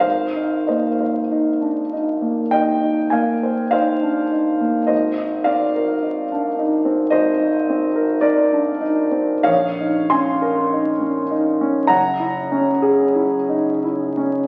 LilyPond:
\new Staff \with { instrumentName = "Grand piano" } { \time 4/4 \key aes \lydian \tempo 4 = 50 << { <c'' f''>8 <c'' ees''>4. <ees'' g''>8 <f'' aes''>8 <c'' f''>4 | <c'' ees''>8 <d'' f''>4. <c'' ees''>4 <bes' d''>8 r8 | <des'' f''>8 <aes'' c'''>4. <ges'' bes''>2 | } \\ { aes,,16 ees'16 bes16 c''16 ees'16 d'16 ees'16 bes16 ees,16 ees'16 bes16 c''16 ees'16 d'16 ees'16 bes16 | aes,,16 ees'16 c'16 bes'16 ees'16 d'16 ees'16 c'16 aes,,16 ees'16 c'16 bes'16 ees'16 d'16 ees'16 c'16 | bes,,16 ees'16 des'16 bes'16 ees'16 des'16 ees'16 des'16 ges,,16 fes'16 des'16 aes'16 fes'16 ees'16 fes'16 des'16 | } >> }